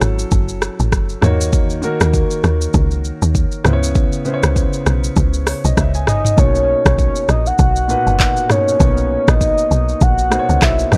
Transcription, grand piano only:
0.00 1.24 F#3 medium
0.00 1.25 C#4 medium
0.00 1.24 E4 medium
0.00 1.24 A4 loud
1.21 1.76 D#3 medium
1.21 1.77 A#3 medium
1.21 1.77 F#4 medium
1.21 1.78 C#5 loud
1.82 2.91 D#3 medium
1.82 2.92 A#3 medium
1.82 2.92 F#4 medium
1.82 2.92 A#4 medium
3.64 4.19 C#3 medium
3.64 4.19 B3 medium
3.64 4.20 E4 medium
3.64 3.73 C5 medium
3.73 4.23 C#5 loud
4.25 5.34 C#3 medium
4.25 5.34 B3 medium
4.25 5.35 E4 medium
4.25 4.34 C5 medium
4.34 5.38 C#5 medium
5.47 5.63 C#5 medium
5.65 5.76 D#5 medium
5.77 5.94 E5 medium
5.95 6.06 G#5 medium
6.08 6.36 G#5 medium
6.37 7.46 B2 medium
6.37 7.46 A#3 medium
6.37 7.47 D#4 medium
6.37 7.47 C#5 medium
7.88 8.43 A#2 medium
7.88 8.43 B2 medium
7.88 8.44 D#4 medium
7.88 8.44 B4 medium
8.49 8.76 B2 medium
8.49 8.77 A#3 medium
8.49 8.77 D#4 medium
8.49 8.78 C#5 medium
8.79 9.89 A#3 medium
8.79 9.88 B3 medium
8.79 9.89 D#4 medium
8.79 9.89 C#5 medium
10.30 10.85 B2 medium
10.30 10.86 A#3 medium
10.30 10.86 D#4 medium
10.30 10.40 C5 medium
10.39 10.90 C#5 medium
10.91 10.98 E3 medium
10.91 10.98 B3 medium
10.91 10.98 F#4 medium
10.91 10.98 G4 medium

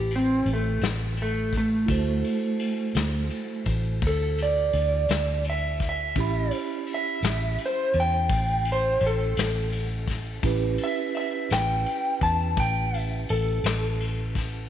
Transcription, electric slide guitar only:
0.00 0.12 G4 medium
0.16 0.48 C4 medium
0.53 0.84 A3 medium
1.22 1.54 A3 medium
1.57 3.65 A3 medium
4.07 4.39 A4 medium
4.43 5.44 D5 medium
5.50 5.82 E5 medium
5.89 6.54 E5 medium
6.94 7.60 E5 medium
7.66 7.97 C5 medium
8.00 8.67 G5 medium
8.72 9.04 C5 loud
9.07 10.43 A4 medium
10.84 11.16 E5 medium
11.17 11.51 E5 medium
11.53 12.21 G5 medium
12.23 12.57 A5 medium
12.60 12.96 G5 medium
12.96 13.29 E5 medium
13.30 14.68 A4 medium

